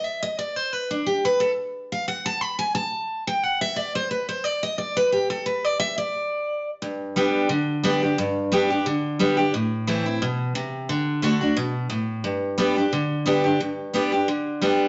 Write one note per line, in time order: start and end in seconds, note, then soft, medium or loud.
0.05 0.22 E5 loud
0.23 0.38 D#5 loud
0.39 0.56 D5 medium
0.56 0.73 C5 loud
0.73 0.90 B4 loud
0.91 1.06 D4 medium
1.06 1.24 G4 medium
1.25 1.40 B4 loud
1.40 1.51 A4 medium
1.92 2.07 F5 loud
2.08 2.25 F#5 loud
2.26 2.41 A5 loud
2.41 2.58 B5 loud
2.59 2.74 G#5 loud
2.75 3.23 A5 loud
3.27 3.43 G5 loud
3.43 3.61 F#5 loud
3.61 3.76 E5 loud
3.76 3.94 D5 medium
3.95 4.10 C5 loud
4.11 4.28 B4 medium
4.29 4.44 C5 medium
4.44 4.62 D5 medium
4.63 4.78 D#5 loud
4.78 4.96 D5 medium
4.97 5.12 B4 loud
5.12 5.30 G4 medium
5.30 5.45 A4 medium
5.46 5.65 B4 loud
5.65 5.79 D5 loud
5.80 5.97 E5 loud
5.98 6.70 D5 medium
6.82 7.47 G2 medium
7.16 7.48 G3 medium
7.16 7.49 B3 loud
7.16 7.49 D4 medium
7.16 7.49 G4 medium
7.49 8.14 D3 medium
7.83 8.01 G3 medium
7.83 8.02 B3 medium
7.83 8.02 D4 medium
7.83 8.01 G4 loud
8.03 8.18 D4 soft
8.03 8.17 G4 medium
8.18 8.83 G2 medium
8.52 8.69 G3 medium
8.52 8.70 B3 medium
8.52 8.70 D4 medium
8.52 8.69 G4 loud
8.70 8.86 D4 medium
8.70 8.85 G4 medium
8.86 9.50 D3 medium
9.19 9.37 G3 medium
9.19 9.37 B3 medium
9.19 9.38 D4 medium
9.19 9.36 G4 medium
9.37 9.53 D4 medium
9.37 9.52 G4 medium
9.54 10.18 A2 medium
9.87 10.05 E3 medium
9.87 10.05 A3 medium
9.87 10.05 C4 medium
9.87 10.05 E4 medium
10.06 10.22 C4 medium
10.06 10.21 E4 medium
10.22 10.54 B2 loud
10.55 10.87 C3 medium
10.89 11.21 D3 medium
11.22 11.40 D3 medium
11.22 11.41 A3 medium
11.22 11.41 D4 medium
11.22 11.40 F#4 loud
11.41 11.57 D4 soft
11.41 11.56 F#4 medium
11.57 11.89 B2 medium
11.90 12.22 A2 medium
12.24 12.89 G2 medium
12.58 12.76 G3 medium
12.58 12.76 B3 medium
12.58 12.76 D4 medium
12.58 12.75 G4 loud
12.76 12.92 D4 medium
12.76 12.91 G4 medium
12.93 13.57 D3 medium
13.26 13.43 G3 medium
13.26 13.44 B3 medium
13.26 13.44 D4 loud
13.26 13.43 G4 medium
13.44 13.60 D4 soft
13.44 13.59 G4 medium
13.60 14.25 G2 medium
13.94 14.11 G3 medium
13.94 14.11 B3 medium
13.94 14.12 D4 medium
13.94 14.11 G4 loud
14.12 14.28 D4 soft
14.12 14.27 G4 medium
14.28 14.88 D3 medium
14.61 14.88 G3 medium
14.61 14.88 B3 medium
14.61 14.88 D4 medium
14.61 14.88 G4 medium